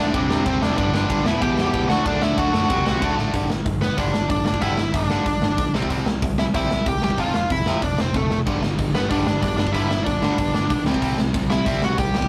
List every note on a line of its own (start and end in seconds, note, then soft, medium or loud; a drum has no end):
0.00 0.13 D3 medium
0.00 0.13 A3 medium
0.00 0.13 A3 loud
0.00 0.13 D4 loud
0.00 0.14 D4 loud
0.00 0.42 D4 medium
0.00 0.42 D5 medium
0.13 0.24 E1 medium
0.13 0.29 C3 loud
0.13 0.28 G3 loud
0.13 0.28 C4 loud
0.13 kick loud
0.13 crash medium
0.29 0.40 E1 loud
0.29 0.43 C3 medium
0.29 0.44 G3 medium
0.29 0.45 C4 loud
0.29 snare loud
0.45 0.56 E1 loud
0.45 0.61 C3 loud
0.45 0.61 G3 loud
0.45 0.60 C4 loud
0.45 0.61 C4 medium
0.45 0.61 C5 medium
0.45 kick loud
0.45 crash medium
0.61 0.72 E1 medium
0.61 0.77 C3 medium
0.61 0.77 G3 medium
0.61 0.76 C4 medium
0.61 0.77 D4 medium
0.61 0.77 D5 medium
0.61 snare loud
0.77 0.88 G1 loud
0.77 0.94 G2 loud
0.77 0.93 D3 loud
0.77 0.92 G3 loud
0.77 1.23 D4 medium
0.77 1.27 D5 loud
0.77 kick loud
0.77 crash medium
0.92 1.03 G1 medium
0.92 1.08 G2 medium
0.92 1.09 D3 medium
0.92 1.10 G3 loud
0.92 snare loud
1.09 1.20 G1 medium
1.09 1.24 G2 loud
1.09 1.25 D3 loud
1.09 1.25 G3 loud
1.09 kick loud
1.09 crash medium
1.25 1.36 E1 loud
1.25 1.41 E2 loud
1.25 1.40 B2 loud
1.25 1.40 E3 loud
1.25 1.41 E4 medium
1.25 1.41 E5 loud
1.25 snare loud
1.41 1.52 E1 medium
1.41 1.57 E2 medium
1.41 1.57 B2 loud
1.41 1.58 E3 loud
1.41 1.87 G4 medium
1.41 1.89 G5 loud
1.41 kick loud
1.41 crash medium
1.57 1.67 E1 medium
1.57 1.74 E2 medium
1.57 1.73 B2 loud
1.57 1.73 E3 medium
1.57 snare loud
1.73 1.84 E1 medium
1.73 1.89 E2 medium
1.73 1.89 B2 loud
1.73 1.89 E3 loud
1.73 kick loud
1.73 crash medium
1.89 1.99 D2 medium
1.89 2.05 D3 medium
1.89 2.04 A3 loud
1.89 2.04 D4 loud
1.89 2.05 F#4 medium
1.89 2.05 F#5 loud
1.89 snare loud
2.05 2.16 D2 loud
2.05 2.20 D3 medium
2.05 2.21 A3 loud
2.05 2.21 D4 loud
2.05 2.21 D4 medium
2.05 2.22 D5 loud
2.05 kick loud
2.05 crash medium
2.21 2.31 D2 medium
2.21 2.37 D3 medium
2.21 2.37 A3 loud
2.21 2.36 D4 loud
2.21 2.37 E4 medium
2.21 2.38 E5 medium
2.21 snare loud
2.37 2.48 D2 medium
2.37 2.51 D3 medium
2.37 2.52 A3 loud
2.37 2.53 D4 loud
2.37 3.14 F#4 medium
2.37 3.14 F#5 loud
2.37 kick loud
2.37 crash medium
2.53 2.63 F#2 medium
2.53 2.68 D3 medium
2.53 2.69 A3 loud
2.53 2.69 D4 loud
2.53 snare loud
2.69 2.80 E1 medium
2.69 2.86 C3 loud
2.69 2.85 G3 loud
2.69 2.84 C4 loud
2.69 kick loud
2.69 crash medium
2.85 2.95 C2 medium
2.85 3.00 C3 medium
2.85 3.01 G3 medium
2.85 3.00 C4 medium
2.85 snare loud
3.01 3.12 D2 loud
3.01 3.17 D3 loud
3.01 3.16 A3 loud
3.01 3.16 D4 loud
3.01 kick loud
3.01 crash medium
3.17 3.28 A1 medium
3.17 3.32 D3 medium
3.17 3.33 A3 loud
3.17 3.33 D4 loud
3.17 snare medium
3.33 3.45 G1 medium
3.33 3.48 G2 medium
3.33 3.49 D3 medium
3.33 3.49 G3 loud
3.33 kick loud
3.33 open hi-hat medium
3.50 3.61 G1 medium
3.50 3.64 G2 medium
3.50 3.64 D3 medium
3.50 snare loud
3.65 3.88 G1 medium
3.65 3.80 G2 medium
3.65 3.80 D3 medium
3.65 kick loud
3.65 open hi-hat medium
3.81 3.96 G2 medium
3.81 3.96 D3 medium
3.81 3.97 B3 medium
3.81 3.97 B4 medium
3.81 snare loud
3.97 4.09 G1 medium
3.97 4.12 G2 medium
3.97 4.12 D3 loud
3.97 4.13 G3 loud
3.97 4.28 D4 medium
3.97 4.28 D5 medium
3.97 kick loud
3.97 open hi-hat medium
4.13 4.25 G1 medium
4.13 4.27 G2 medium
4.13 4.28 D3 medium
4.13 snare loud
4.28 4.41 G1 medium
4.28 4.43 G2 medium
4.28 4.44 D3 medium
4.28 4.45 D4 medium
4.28 4.44 D5 loud
4.28 kick loud
4.28 open hi-hat medium
4.45 4.57 G1 medium
4.45 4.60 G2 medium
4.45 4.60 D3 medium
4.45 4.62 D4 medium
4.45 4.61 D5 loud
4.45 snare loud
4.54 kick medium
4.61 4.73 G1 loud
4.61 4.76 G2 loud
4.61 4.76 D3 loud
4.61 4.77 G3 loud
4.61 4.93 E4 medium
4.61 4.93 E5 loud
4.61 kick loud
4.61 open hi-hat medium
4.77 4.89 G1 medium
4.77 4.92 G2 medium
4.77 4.92 D3 medium
4.77 snare loud
4.93 5.16 G1 loud
4.93 5.08 G2 medium
4.93 5.09 D3 medium
4.93 5.71 D4 medium
4.93 5.70 D5 medium
4.93 kick loud
4.93 open hi-hat medium
5.10 5.24 G2 medium
5.10 5.25 D3 medium
5.10 5.25 G3 loud
5.10 snare loud
5.25 5.37 G1 medium
5.25 5.40 G2 medium
5.25 5.40 D3 medium
5.25 kick loud
5.25 open hi-hat medium
5.41 5.53 G1 medium
5.41 5.56 G2 medium
5.41 5.56 D3 medium
5.41 snare loud
5.57 5.69 B1 medium
5.57 5.72 G2 medium
5.57 5.72 D3 medium
5.57 kick loud
5.57 open hi-hat medium
5.74 5.85 C2 medium
5.74 5.89 C3 medium
5.74 5.89 G3 medium
5.74 5.90 C4 loud
5.74 snare loud
5.82 kick medium
5.90 6.01 C2 medium
5.90 6.05 C3 medium
5.90 6.05 G3 loud
5.90 6.05 C4 loud
5.90 kick medium
5.90 open hi-hat medium
6.06 6.17 C2 medium
6.06 6.21 C3 medium
6.06 6.21 G3 medium
6.06 snare loud
6.22 6.44 C2 medium
6.22 6.37 C3 medium
6.22 6.37 G3 medium
6.22 kick loud
6.22 open hi-hat medium
6.38 6.53 C3 medium
6.38 6.53 G3 medium
6.38 6.45 E4 medium
6.38 6.44 E5 loud
6.38 snare loud
6.54 6.65 C2 medium
6.54 6.70 C3 medium
6.54 6.70 G3 medium
6.54 6.70 C4 loud
6.54 6.85 E4 medium
6.54 6.88 E5 loud
6.54 kick loud
6.54 open hi-hat medium
6.71 6.82 C2 loud
6.71 6.85 C3 medium
6.71 6.85 G3 medium
6.71 snare loud
6.86 6.97 C2 loud
6.86 7.01 C3 medium
6.86 7.01 G3 medium
6.86 7.02 G4 medium
6.86 7.03 G5 loud
6.86 kick loud
6.86 open hi-hat medium
7.02 7.13 C2 medium
7.02 7.17 C3 medium
7.02 7.17 G3 medium
7.02 7.18 G4 medium
7.02 7.20 G5 loud
7.02 snare loud
7.10 kick medium
7.18 7.29 F1 loud
7.18 7.33 F2 medium
7.18 7.33 C3 loud
7.18 7.34 F3 loud
7.18 7.34 F4 medium
7.18 7.35 F5 loud
7.18 kick loud
7.18 open hi-hat medium
7.34 7.45 F1 medium
7.34 7.49 F2 medium
7.34 7.49 C3 medium
7.34 7.50 F4 medium
7.34 7.52 F5 loud
7.34 snare loud
7.50 7.72 F1 medium
7.50 7.65 F2 medium
7.50 7.65 C3 medium
7.50 7.80 E4 medium
7.50 7.84 E5 loud
7.50 kick loud
7.50 open hi-hat medium
7.66 7.81 F2 loud
7.66 7.81 C3 medium
7.66 7.82 F3 loud
7.66 snare loud
7.82 7.93 F1 medium
7.82 7.96 F2 medium
7.82 7.97 C3 medium
7.82 7.98 D4 medium
7.82 7.98 D5 medium
7.82 kick loud
7.82 open hi-hat medium
7.98 8.10 F1 medium
7.98 8.13 F2 medium
7.98 8.13 C3 medium
7.98 8.14 C4 medium
7.98 8.15 C5 medium
7.98 snare loud
8.14 8.25 F1 loud
8.14 8.29 F2 medium
8.14 8.29 C3 medium
8.14 8.38 A3 medium
8.14 8.38 A4 medium
8.14 kick loud
8.14 snare medium
8.30 8.41 F1 medium
8.30 8.45 F2 medium
8.30 8.45 C3 medium
8.30 snare medium
8.46 8.57 G1 loud
8.46 8.61 G2 medium
8.46 8.61 D3 loud
8.46 8.62 G3 medium
8.46 kick loud
8.46 crash loud
8.62 8.73 G1 medium
8.62 8.77 G2 medium
8.62 8.77 D3 medium
8.62 snare loud
8.79 9.00 G1 medium
8.79 8.93 G2 medium
8.79 8.93 D3 medium
8.79 kick loud
8.79 open hi-hat medium
8.93 9.09 G2 medium
8.93 9.09 D3 medium
8.93 9.77 G3 medium
8.93 9.10 B3 medium
8.93 9.09 B4 medium
8.93 snare loud
9.10 9.22 G1 medium
9.10 9.26 G2 medium
9.10 9.26 D3 medium
9.10 9.26 G3 medium
9.10 9.41 D4 medium
9.10 9.41 D5 medium
9.10 kick loud
9.10 open hi-hat medium
9.25 9.37 G1 medium
9.25 9.41 G2 medium
9.25 9.41 D3 medium
9.25 snare loud
9.42 9.53 G1 medium
9.42 9.57 G2 medium
9.42 9.57 D3 medium
9.42 9.58 D4 medium
9.42 9.56 D5 medium
9.42 kick loud
9.42 open hi-hat medium
9.57 9.69 G1 medium
9.57 9.73 G2 medium
9.57 9.73 D3 medium
9.57 9.74 D4 medium
9.57 9.72 D5 loud
9.57 snare loud
9.67 kick medium
9.72 9.85 G1 medium
9.72 9.89 G2 loud
9.72 9.90 D3 loud
9.72 9.90 G3 loud
9.72 9.90 E4 medium
9.72 9.87 E5 loud
9.72 kick loud
9.72 open hi-hat medium
9.88 10.01 G1 medium
9.88 10.05 G2 medium
9.88 10.05 D3 medium
9.88 10.06 E4 medium
9.88 10.04 E5 medium
9.88 snare loud
10.04 10.28 G1 medium
10.04 10.21 G2 medium
10.04 10.21 D3 medium
10.04 10.83 D4 medium
10.04 10.81 D5 medium
10.04 kick loud
10.04 open hi-hat medium
10.22 10.37 G2 medium
10.22 10.38 D3 medium
10.22 10.38 G3 medium
10.22 snare loud
10.38 10.49 G1 medium
10.38 10.53 G2 medium
10.38 10.53 D3 medium
10.38 kick loud
10.38 open hi-hat medium
10.53 10.65 G1 medium
10.53 10.69 G2 medium
10.53 10.69 D3 medium
10.53 snare loud
10.70 10.81 B1 medium
10.70 10.85 G2 medium
10.70 10.85 D3 medium
10.70 kick loud
10.70 open hi-hat medium
10.86 10.97 C2 medium
10.86 11.01 C3 medium
10.86 11.02 G3 loud
10.86 11.02 C4 loud
10.86 snare loud
10.94 kick medium
11.02 11.13 C2 loud
11.02 11.17 C3 medium
11.02 11.18 G3 loud
11.02 11.18 C4 loud
11.02 kick loud
11.02 open hi-hat medium
11.18 11.29 C2 medium
11.18 11.33 C3 medium
11.18 11.33 G3 medium
11.18 snare loud
11.34 11.56 C2 medium
11.34 11.49 C3 medium
11.34 11.49 G3 medium
11.34 12.14 C4 medium
11.34 kick loud
11.34 open hi-hat medium
11.50 11.65 C3 medium
11.50 11.65 G3 medium
11.50 11.65 E4 medium
11.50 11.66 E5 loud
11.50 snare loud
11.66 11.77 C2 medium
11.66 11.82 C3 loud
11.66 11.82 G3 loud
11.66 11.82 C4 loud
11.66 11.81 E4 medium
11.66 11.84 E5 medium
11.66 kick loud
11.66 open hi-hat medium
11.82 11.93 C2 loud
11.82 11.97 C3 medium
11.82 11.97 G3 medium
11.82 11.98 F#4 medium
11.82 12.00 F#5 medium
11.82 snare loud
11.98 12.09 C2 loud
11.98 12.13 C3 medium
11.98 12.13 G3 loud
11.98 12.28 G4 medium
11.98 12.28 G5 medium
11.98 kick loud
11.98 open hi-hat medium
12.13 12.25 C2 medium
12.13 12.28 C3 medium
12.13 12.28 G3 medium
12.13 snare loud
12.22 kick medium